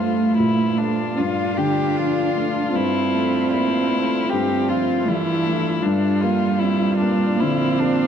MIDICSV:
0, 0, Header, 1, 6, 480
1, 0, Start_track
1, 0, Tempo, 792602
1, 1199, Tempo, 771208
1, 1680, Time_signature, 4, 2, 24, 8
1, 4079, Tempo, 794702
1, 4963, End_track
2, 0, Start_track
2, 0, Title_t, "Ambient pad"
2, 0, Program_c, 0, 92
2, 0, Note_on_c, 0, 62, 54
2, 0, Note_on_c, 0, 69, 49
2, 0, Note_on_c, 0, 74, 55
2, 1682, Note_off_c, 0, 74, 0
2, 1684, Note_on_c, 0, 76, 54
2, 3579, Note_off_c, 0, 62, 0
2, 3592, Note_on_c, 0, 74, 56
2, 3597, Note_on_c, 0, 53, 52
2, 3598, Note_on_c, 0, 58, 56
2, 3602, Note_off_c, 0, 76, 0
2, 3604, Note_off_c, 0, 69, 0
2, 4963, Note_off_c, 0, 53, 0
2, 4963, Note_off_c, 0, 58, 0
2, 4963, Note_off_c, 0, 74, 0
2, 4963, End_track
3, 0, Start_track
3, 0, Title_t, "Viola"
3, 0, Program_c, 1, 41
3, 0, Note_on_c, 1, 65, 56
3, 3574, Note_off_c, 1, 65, 0
3, 3597, Note_on_c, 1, 65, 65
3, 4963, Note_off_c, 1, 65, 0
3, 4963, End_track
4, 0, Start_track
4, 0, Title_t, "Violin"
4, 0, Program_c, 2, 40
4, 0, Note_on_c, 2, 65, 45
4, 223, Note_off_c, 2, 65, 0
4, 227, Note_on_c, 2, 64, 46
4, 470, Note_on_c, 2, 62, 50
4, 479, Note_off_c, 2, 64, 0
4, 713, Note_on_c, 2, 65, 53
4, 722, Note_off_c, 2, 62, 0
4, 954, Note_on_c, 2, 67, 52
4, 963, Note_off_c, 2, 65, 0
4, 1189, Note_on_c, 2, 65, 49
4, 1198, Note_off_c, 2, 67, 0
4, 1681, Note_on_c, 2, 64, 57
4, 1691, Note_off_c, 2, 65, 0
4, 2159, Note_off_c, 2, 64, 0
4, 2163, Note_on_c, 2, 64, 56
4, 2640, Note_on_c, 2, 67, 58
4, 2649, Note_off_c, 2, 64, 0
4, 2885, Note_on_c, 2, 65, 50
4, 2895, Note_off_c, 2, 67, 0
4, 3126, Note_on_c, 2, 64, 57
4, 3136, Note_off_c, 2, 65, 0
4, 3589, Note_on_c, 2, 62, 52
4, 3598, Note_off_c, 2, 64, 0
4, 3833, Note_on_c, 2, 65, 61
4, 3842, Note_off_c, 2, 62, 0
4, 4068, Note_on_c, 2, 64, 60
4, 4078, Note_off_c, 2, 65, 0
4, 4302, Note_off_c, 2, 64, 0
4, 4305, Note_on_c, 2, 62, 55
4, 4556, Note_on_c, 2, 64, 57
4, 4565, Note_off_c, 2, 62, 0
4, 4796, Note_on_c, 2, 62, 60
4, 4805, Note_off_c, 2, 64, 0
4, 4963, Note_off_c, 2, 62, 0
4, 4963, End_track
5, 0, Start_track
5, 0, Title_t, "Cello"
5, 0, Program_c, 3, 42
5, 0, Note_on_c, 3, 57, 70
5, 716, Note_on_c, 3, 62, 80
5, 725, Note_off_c, 3, 57, 0
5, 1675, Note_off_c, 3, 62, 0
5, 1680, Note_on_c, 3, 60, 77
5, 2621, Note_off_c, 3, 60, 0
5, 2645, Note_on_c, 3, 60, 77
5, 3122, Note_on_c, 3, 52, 72
5, 3132, Note_off_c, 3, 60, 0
5, 3592, Note_off_c, 3, 52, 0
5, 3596, Note_on_c, 3, 55, 81
5, 4548, Note_on_c, 3, 60, 97
5, 4557, Note_off_c, 3, 55, 0
5, 4963, Note_off_c, 3, 60, 0
5, 4963, End_track
6, 0, Start_track
6, 0, Title_t, "Upright piano"
6, 0, Program_c, 4, 0
6, 0, Control_c, 4, 64, 127
6, 0, Note_on_c, 4, 43, 46
6, 0, Note_on_c, 4, 57, 38
6, 239, Note_on_c, 4, 46, 33
6, 382, Note_off_c, 4, 57, 0
6, 478, Note_on_c, 4, 57, 36
6, 481, Note_off_c, 4, 46, 0
6, 704, Note_off_c, 4, 43, 0
6, 720, Note_on_c, 4, 43, 43
6, 867, Note_off_c, 4, 57, 0
6, 956, Note_on_c, 4, 50, 40
6, 1193, Note_on_c, 4, 53, 34
6, 1340, Note_off_c, 4, 50, 0
6, 1433, Note_on_c, 4, 57, 36
6, 1437, Note_off_c, 4, 53, 0
6, 1652, Note_off_c, 4, 43, 0
6, 1673, Note_on_c, 4, 43, 48
6, 1676, Note_off_c, 4, 57, 0
6, 1692, Control_c, 4, 64, 0
6, 1777, Control_c, 4, 64, 127
6, 1919, Note_on_c, 4, 57, 40
6, 2170, Note_on_c, 4, 58, 35
6, 2305, Note_off_c, 4, 57, 0
6, 2406, Note_off_c, 4, 58, 0
6, 2414, Note_on_c, 4, 57, 37
6, 2612, Note_off_c, 4, 43, 0
6, 2656, Note_on_c, 4, 43, 44
6, 2790, Note_off_c, 4, 57, 0
6, 2893, Note_on_c, 4, 53, 45
6, 3133, Note_on_c, 4, 55, 37
6, 3270, Note_off_c, 4, 53, 0
6, 3366, Note_off_c, 4, 55, 0
6, 3368, Note_on_c, 4, 57, 42
6, 3583, Note_off_c, 4, 43, 0
6, 3604, Note_off_c, 4, 57, 0
6, 3608, Note_on_c, 4, 43, 56
6, 3611, Control_c, 4, 64, 0
6, 3727, Control_c, 4, 64, 127
6, 3846, Note_on_c, 4, 58, 46
6, 4085, Note_on_c, 4, 60, 38
6, 4226, Note_off_c, 4, 58, 0
6, 4322, Note_off_c, 4, 60, 0
6, 4325, Note_on_c, 4, 58, 40
6, 4543, Note_off_c, 4, 43, 0
6, 4569, Note_on_c, 4, 50, 46
6, 4710, Note_off_c, 4, 58, 0
6, 4811, Note_on_c, 4, 58, 44
6, 4946, Note_off_c, 4, 50, 0
6, 4963, Note_off_c, 4, 58, 0
6, 4963, End_track
0, 0, End_of_file